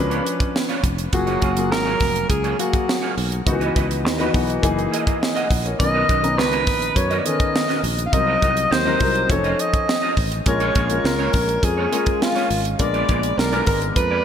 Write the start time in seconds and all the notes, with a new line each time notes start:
Already playing: C#2 F3 C#4 D4 B4
0.10 B3 D4 F4 C#5, closed hi-hat
0.25 muted clean electric guitar stroke, closed hi-hat
0.40 muted clean electric guitar stroke, kick, closed hi-hat
0.54 muted clean electric guitar stroke, snare
0.69 B3 D4 F4 C#5, closed hi-hat
0.83 F1, muted clean electric guitar stroke, kick, closed hi-hat
0.98 muted clean electric guitar stroke, closed hi-hat
1.12 F#1 F#3 A#3 F4 F#4 G#4, muted clean electric guitar stroke, kick, closed hi-hat
1.27 A#3 F4 G#4 C#5, closed hi-hat
1.41 F#1 A#3 F4 G#4 C#5, kick, closed hi-hat
1.56 F#3 A#3 F4 G#4, muted clean electric guitar stroke, closed hi-hat
1.70 G#1 A#4, muted clean electric guitar stroke, snare
1.85 A#3 F4 G#4 C#5
2.00 F1, muted clean electric guitar stroke, kick, snare, open hi-hat
2.15 muted clean electric guitar stroke, closed hi-hat
2.29 C#2 G#4, muted clean electric guitar stroke, kick, closed hi-hat
2.44 A#3 F4 G#4 C#5, closed hi-hat
2.59 F#3 A#3 F#4 G#4 F5, closed hi-hat
2.73 muted clean electric guitar stroke, kick, closed hi-hat
2.87 muted clean electric guitar stroke, snare
3.02 A#3 F4 G#4 C#5
3.17 B1, muted clean electric guitar stroke, open hi-hat
3.31 muted clean electric guitar stroke, closed hi-hat
3.46 C#2 D#3 B3 D#4 F#4, muted clean electric guitar stroke, kick, closed hi-hat
3.53 E3
3.60 E4 F#4 B4 D#5, closed hi-hat
3.75 C#2 E4 F#4 B4 D#5, kick, closed hi-hat
3.89 muted clean electric guitar stroke, closed hi-hat
4.04 D#2, muted clean electric guitar stroke, snare
4.18 E3 B3 D#4 E4 F#4 B4 D#5, closed hi-hat
4.33 B1 E3 B3 D#4 F#4, muted clean electric guitar stroke, kick, open hi-hat
4.48 muted clean electric guitar stroke, closed hi-hat
4.62 F#1 E3 A#3 D#4 G#4, muted clean electric guitar stroke, kick, closed hi-hat
4.77 muted clean electric guitar stroke, closed hi-hat
4.91 A#3 E4 G#4 D#5, closed hi-hat
5.06 A#3 E4 G#4 D#5, kick, closed hi-hat
5.21 muted clean electric guitar stroke, snare
5.35 A#3 E4 G#4 D#5 F#5, closed hi-hat
5.50 A#1 D#5, muted clean electric guitar stroke, kick, open hi-hat
5.65 A#4 C#5, muted clean electric guitar stroke, closed hi-hat
5.79 B1 D#3 B3 C#4 A#4 D#5, muted clean electric guitar stroke, kick, closed hi-hat
5.94 C#4 F#4 A#4 D#5
6.08 B1 C#4 F#4 A#4 D#5, kick, closed hi-hat
6.23 D#3 B3 C#4 A#5, muted clean electric guitar stroke, closed hi-hat
6.38 C#2 B4, muted clean electric guitar stroke, snare
6.52 C#4 F#4 A#4 D#5, closed hi-hat
6.67 A#1, muted clean electric guitar stroke, kick, snare, open hi-hat
6.81 muted clean electric guitar stroke, closed hi-hat
6.96 F#2 C#5, muted clean electric guitar stroke, kick, closed hi-hat
7.10 C#4 F#4 A#4 D#5, closed hi-hat
7.19 D5
7.25 D#3 B3 C#4 A4 D#5, muted clean electric guitar stroke, closed hi-hat
7.32 A#4
7.39 muted clean electric guitar stroke, kick, closed hi-hat
7.54 muted clean electric guitar stroke, snare
7.68 C#4 F#4 A#4 D#5, snare, closed hi-hat
7.83 A#1, muted clean electric guitar stroke, open hi-hat
7.98 muted clean electric guitar stroke, closed hi-hat
8.06 F5
8.12 C2 F#3 C4 D#4 A#4 D#5, muted clean electric guitar stroke, kick, closed hi-hat
8.27 C4 F#4 A#4 D#5
8.41 C2 C4 F#4 A#4 D#5, kick, closed hi-hat
8.57 muted clean electric guitar stroke, closed hi-hat
8.71 D#2 C5, muted clean electric guitar stroke, snare
8.85 F#3 C4 D#4 F#4 A#4 D#5
9.00 C2 F#3 C4 D#4 A#4, muted clean electric guitar stroke, kick, open hi-hat
9.15 muted clean electric guitar stroke, closed hi-hat
9.29 F1 F3 C#4 D#4 A4 C#5, muted clean electric guitar stroke, kick, closed hi-hat
9.44 C#4 F4 A4 D#5, closed hi-hat
9.58 D#5, muted clean electric guitar stroke, closed hi-hat
9.73 muted clean electric guitar stroke, kick, closed hi-hat
9.87 muted clean electric guitar stroke, snare
10.02 C#4 F4 A4 D#5
10.16 A1, muted clean electric guitar stroke, kick, open hi-hat
10.31 muted clean electric guitar stroke, closed hi-hat
10.46 A#1 G#3 C#4 F4 A#4 C#5, muted clean electric guitar stroke, kick, closed hi-hat
10.60 A#3 F4 G#4 C#5, closed hi-hat
10.75 A#1 A#3 F4 G#4 C#5, kick, closed hi-hat
10.90 G#3 C#4 F4 A#4, muted clean electric guitar stroke, closed hi-hat
11.04 C#2 A#4, muted clean electric guitar stroke, snare
11.19 A#3 F4 G#4 C#5
11.33 A#1, muted clean electric guitar stroke, kick, snare, open hi-hat
11.48 muted clean electric guitar stroke, closed hi-hat
11.63 F2 G#4, muted clean electric guitar stroke, kick, closed hi-hat
11.77 A#3 F4 G#4 C#5
11.91 G#3 A#3 C#4 F4 G#4 A#4 C#5, closed hi-hat
12.06 muted clean electric guitar stroke, kick, closed hi-hat
12.21 F4, muted clean electric guitar stroke, snare
12.35 A#3 F4 G#4 C#5, snare, closed hi-hat
12.50 G#1, open hi-hat
12.65 muted clean electric guitar stroke, closed hi-hat
12.79 A#1 G#3 B3 D4 A#4 D5, muted clean electric guitar stroke, kick, closed hi-hat
12.94 B3 F4 G#4 D5, closed hi-hat
13.08 A#1 B3 F4 G#4 D5, kick, closed hi-hat
13.23 muted clean electric guitar stroke, closed hi-hat
13.38 B1 A#4, muted clean electric guitar stroke, snare
13.51 G#3 B3 D4 F4 G#4 A#4 D5, closed hi-hat
13.66 G#1 G#3 B3 D4 A#4 B4, muted clean electric guitar stroke, kick, open hi-hat
13.82 muted clean electric guitar stroke, closed hi-hat
13.96 F2 B4, muted clean electric guitar stroke, kick, closed hi-hat
14.11 B3 F4 G#4 D5